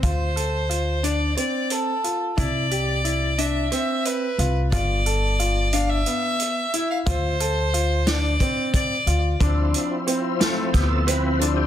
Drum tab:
HH |xxxxxxx|xxxxxxx|xxxxxxx|xxxxxxx|
SD |-------|-------|-------|---o---|
BD |o------|o------|o------|o---oo-|

HH |xxxxxxx|
SD |---oo--|
BD |o---o--|